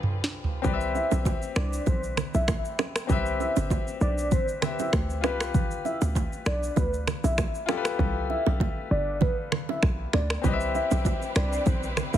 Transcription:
Already playing: C2 D3 G3 C4 F4 G4 A4 B4
0.03 mid tom
0.24 snare
0.44 floor tom
0.62 C2 C4 G4 B4, kick, low conga, shaker
0.67 D5
0.73 E5
0.81 shaker
0.95 E5, low bongo, shaker
1.11 B1, low bongo, shaker
1.25 kick, high bongo, shaker
1.42 shaker
1.56 C2 D5, finger snap, cross-stick, shaker
1.73 shaker
1.86 B1 C5, kick, high bongo, low conga, shaker
2.03 shaker
2.17 finger snap, cross-stick, low conga, shaker
2.34 B1 E5, low bongo, shaker
2.48 finger snap, kick, cross-stick, high bongo, shaker
2.65 shaker
2.79 finger snap, cross-stick, low bongo, shaker
2.96 finger snap, cross-stick, shaker
3.07 C2 C4 G4 B4, kick, low conga, shaker
3.12 E5
3.26 shaker
3.40 E5, low bongo, shaker
3.56 G1, low bongo, shaker
3.70 kick, high bongo, shaker
3.88 shaker
4.01 B1 D5, shaker
4.18 shaker
4.31 C5, kick, high bongo, low conga, shaker
4.48 shaker
4.61 C4 G4 B4 E5, finger snap, cross-stick, low conga, shaker
4.79 E5, low bongo, shaker
4.93 D2, finger snap, kick, cross-stick, high bongo, shaker
5.10 shaker
5.21 C2 F4 G4 B4, finger snap, cross-stick, low bongo, shaker
5.26 B4
5.40 finger snap, cross-stick, shaker
5.54 kick, low conga, shaker
5.71 shaker
5.85 E5, low bongo, shaker
6.02 D2, low bongo, shaker
6.15 kick, high bongo, shaker
6.33 shaker
6.46 B1 D5, finger snap, cross-stick, shaker
6.63 shaker
6.76 D2 B4, kick, high bongo, low conga, shaker
6.94 shaker
7.07 finger snap, cross-stick, low conga, shaker
7.24 B1 E5, low bongo, shaker
7.38 finger snap, kick, cross-stick, high bongo, shaker
7.55 shaker
7.66 F4 G4, finger snap, cross-stick, low bongo, shaker
7.71 A4
7.77 B4
7.85 finger snap, cross-stick, shaker
7.99 C2, kick, low conga
8.30 E5, low bongo
8.46 B1, low bongo
8.60 kick, high bongo
8.91 G1 D5
9.21 B4, kick, high bongo, low conga
9.52 finger snap, cross-stick, low conga
9.69 E5, low bongo
9.83 B1, finger snap, kick, cross-stick, high bongo
10.13 D2 D5, finger snap, cross-stick, low bongo
10.30 finger snap, cross-stick
10.42 C2 C4 E4 G4 B4, kick, low conga, shaker
10.47 D#5
10.53 E5
10.61 shaker
10.75 E5, low bongo, shaker
10.91 B1, low bongo, shaker
11.05 kick, high bongo, shaker
11.22 shaker
11.35 C2 D5, finger snap, cross-stick, shaker
11.53 shaker
11.66 B1 C5, kick, high bongo, low conga, shaker
11.83 shaker
11.97 finger snap, cross-stick, low conga, shaker
12.14 B1 E5, low bongo, shaker

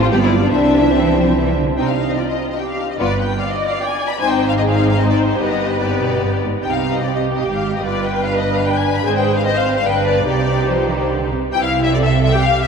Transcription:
Already playing: A1 A2 C5
0.02 F4
0.12 G1 G2 F3 B3 G4 D5
0.23 E4
0.42 D4
0.52 C2 C3 E3 C4 D4 E5
0.95 E3 C4
1.16 F3
1.37 E3
1.57 D3
1.77 C2 C3 C4 D#4 G5
1.88 F5
2.10 D#5
2.19 F4 D5
2.29 D#5
2.50 D#5
2.59 G4 G5
2.70 F5
2.90 D#5
2.99 G1 G2 B3 F4 B4 D5
3.20 G5
3.40 D5 F5
3.50 D#5
3.70 F5
3.80 G5
3.90 G#5
4.09 B5
4.20 G#1 G#2 C4 D#4 C5 G#5
4.29 G5
4.49 F5
4.58 C4 D#4 G#4 D#5
4.70 F5
4.90 F5
4.98 C4 D#4 C5 D#5
5.10 D5
5.30 C5
5.39 G1 G2 B3 G4 B4 D#5
5.82 G2 B3 G4 D5
6.02 B2
6.23 G2
6.43 G#2
6.63 C2 C3 D#4 G4 G5
6.72 F5
6.93 D#5
7.04 G4 D5
7.15 D#5
7.36 D#5
7.45 G#1 G#2 G5
7.55 F5
7.77 D#5
7.85 G1 G2 F4 B4 D5
8.04 G5
8.25 D4 B4 F5
8.35 D#5
8.55 F5
8.66 G5
8.76 G#5
8.97 B5
9.05 G#1 G#2 C4 G#4 C5 G#5
9.17 G5
9.37 F5
9.45 C4 C5 D#5
9.56 F5
9.77 F5
9.86 G1 G2 D4 B4 G5
10.07 D5
10.27 C2 C3 D#4 G4 D5
10.68 F3 C5
10.91 D#3
11.12 D3
11.32 C3
11.52 C2 C3 E4 G5
11.63 F5
11.84 E5
11.94 A4 D5
12.03 E5
12.23 E5
12.33 G4 G5
12.43 F5
12.62 E5

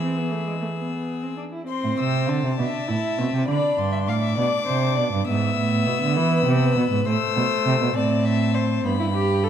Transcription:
Already playing: E3 G#4 E6
0.02 C4
0.18 B3
0.32 A3
0.47 G#3
0.61 A3
0.77 B3
1.23 C4
1.37 D4
1.53 E4
1.67 C4 C5 C6
1.84 A2
1.99 C3 E6
2.29 D3 A5
2.45 C3
2.59 B2 D4 E5
2.88 A2 E4
3.19 B2 C4
3.33 C3
3.48 D3 D4 D5 B5
3.77 G2 C6
3.92 E5
4.08 A2 F5 D6
4.22 E5
4.37 B2 D4 D5
4.67 C3 C5
4.96 B2 D5
5.13 G2
5.26 G#2 B3 E5 E6
5.57 A2
5.87 B2
6.02 D3
6.16 E3 B4
6.46 C3
6.76 B2
6.91 G#2
7.06 A2 A3 C5 E6
7.36 B2
7.66 C3
7.81 B2
7.95 A2 C4 D5 A5
8.25 E5
8.54 C5
8.85 G2 B3 B5
8.99 E4
9.14 G4
9.44 A4

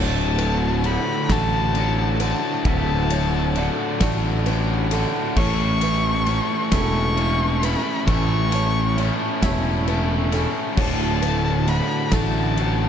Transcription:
Already playing: D1 D2 A2 D3 A3 D4 F#4 A4 C#5 A5
0.38 A2 D3 A3 F#4 B4, ride
0.84 A2 D3 A3 F#4 B5, ride
1.29 A1 D3 A3 F#4 A4 A5, kick, snare, ride
1.75 A2 D3 A3 F#4, ride
2.20 D3 A3 F#4 B4 A5, ride
2.65 D1 D2 A2 D3 A3 F#4 E5 A5, kick, ride
3.10 A2 D3 A3 F#4 C#5, ride
3.56 A2 D3 A3 F#4 D5, ride
4.00 A1 D3 A3 F#4 D5, kick, snare, ride
4.46 A2 D3 A3 F#4 B4, ride
4.91 D3 A3 F#4 A4, ride
5.36 A1 A2 E3 A3 C#4 E4 A4 C#5 C#6, kick, crash
5.81 E3 A3 C#4 E4 A4 B4, ride
6.26 A3 C#4 E4 A4, ride
6.71 E1 A3 C#4 E4 A4 C#6, kick, snare, ride
7.17 A3 C#4 E4 A4, ride
7.62 A3 C#4 E4 A4 B4 B5, ride
8.07 A1 A2 E3 A3 C#4 E4 A4 C#6, kick, ride
8.51 E3 A3 C#4 E4 A4 C#5, ride
8.96 A3 C#4 E4 A4 C#5, ride
9.41 E1 A3 C#4 E4 A4 C#5, kick, snare, ride
9.87 A3 C#4 E4 A4 B4, ride
10.31 A3 C#4 E4 A4, ride
10.76 D1 D2 A2 D3 A3 D4 F#4 C#5 F#5 A5, kick, crash
11.22 A2 D3 A3 F#4 B4, ride
11.66 A2 D3 A3 F#4 B5, ride
12.12 A1 D3 A3 F#4 A4 A5, kick, snare, ride
12.57 A2 D3 A3 F#4, ride

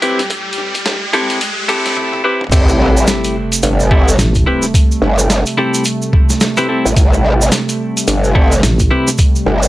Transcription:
Already playing: A2 G3 G4, riser
0.02 C4 E4 G4 B4, closed hi-hat
0.19 snare, closed hi-hat
0.30 kick, closed hi-hat
0.53 closed hi-hat
0.58 snare
0.75 kick, closed hi-hat
0.86 snare, closed hi-hat
1.13 C4 E4 G4 A4, closed hi-hat
1.30 closed hi-hat
1.41 closed hi-hat
1.68 C4 E4 G4 A4, kick, closed hi-hat
1.86 snare, closed hi-hat
1.97 high tom
2.13 high tom
2.24 C4 E4 G4 B4
2.41 mid tom
2.44 mid tom
2.47 mid tom
2.50 A1 C3 G3 A3 C4 G4, kick, closed hi-hat, mid tom, sub drop, shaker
2.52 E4 A4, mid tom, crash
2.56 mid tom
2.61 mid tom
2.65 mid tom, shaker
2.80 snare
2.97 shaker
3.07 snare, closed hi-hat, shaker
3.24 closed hi-hat, shaker
3.52 closed hi-hat, shaker
3.63 G1, closed hi-hat, shaker
3.80 shaker
3.91 C4 E4 G4 A4, kick
4.08 shaker
4.18 A1, snare, closed hi-hat, shaker
4.35 kick, closed hi-hat, shaker
4.46 C4 E4 G4 B4
4.62 snare, shaker
4.74 kick, closed hi-hat, shaker
4.92 shaker
5.02 G1, snare
5.18 shaker
5.30 snare, closed hi-hat, shaker
5.46 closed hi-hat, shaker
5.57 C4 E4 G4 A4
5.74 closed hi-hat, shaker
5.84 closed hi-hat, shaker
6.02 shaker
6.13 kick
6.30 snare, shaker
6.40 snare, closed hi-hat, shaker
6.57 C4 E4 G4 B4, closed hi-hat, shaker
6.69 C4 E4 G4 A4
6.85 A1, shaker
6.96 A1, kick, closed hi-hat, shaker
7.14 shaker
7.24 snare
7.41 shaker
7.52 snare, closed hi-hat, shaker
7.69 closed hi-hat, shaker
7.97 closed hi-hat, shaker
8.08 G1, closed hi-hat, shaker
8.24 shaker
8.35 C4 E4 G4 A4, kick
8.52 shaker
8.63 A1, snare, closed hi-hat, shaker
8.79 kick, closed hi-hat, shaker
8.91 C4 E4 G4 B4
9.08 snare, shaker
9.18 kick, closed hi-hat, shaker
9.36 shaker
9.46 G1, snare
9.63 shaker

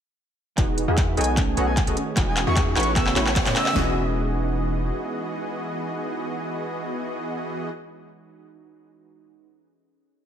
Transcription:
0.56 E1 E3 G#3 B3 D#4 F#4 G#4 D#5, kick, clap, closed hi-hat, riser
0.68 F#4
0.78 D#4, closed hi-hat
0.88 E2 E3 B3 F#4 G#4 E5
0.98 D#4, kick, clap, closed hi-hat
1.08 B4
1.17 B1 B3 D#4 F#4 G#4 A4 C#5 D#5 G#5, closed hi-hat
1.21 closed hi-hat
1.24 F#4, closed hi-hat
1.35 D#3 A3 C#4, kick, clap, closed hi-hat
1.39 G#5
1.48 G#4
1.57 B1 B3 C#4 F#4 G#4 A4 C#5 D#5 F#5, closed hi-hat
1.67 A4 G#5
1.77 kick, clap, closed hi-hat
1.87 B1 B3 F#4 G#4 A4 C#5 D#5, closed hi-hat
1.97 C#4, closed hi-hat
2.07 G#4
2.15 E1 E3 G#3 B3 D#4 F#4 G#4 D#5, kick, clap, closed hi-hat
2.19 F#4
2.27 F#4 G#5
2.37 D#4, clap, closed hi-hat
2.47 E2 E3 B3 F#4 G#4 E5 C#6
2.56 kick, clap, closed hi-hat
2.67 B4
2.76 A1 A3 D#4 E4 F#4 B4 C#5 C#6, clap, closed hi-hat
2.80 closed hi-hat
2.83 F#4, closed hi-hat
2.94 C#3 A3 B3 E6, kick, clap, closed hi-hat
2.98 F#4
3.07 A4, clap
3.16 A1 A3 C#4 E4 F#4 B4 C#5, clap, closed hi-hat
3.26 B4, clap
3.36 C#4, kick, clap, closed hi-hat
3.46 A2 A3 E4 F#4 B4 C#5, clap, closed hi-hat
3.56 C#4 E6, clap, closed hi-hat
3.66 A4, clap
3.73 E1 E3 G#3 B3 D#4 F#4 G#4 D#5, snare, floor tom
3.77 D#4 F#4

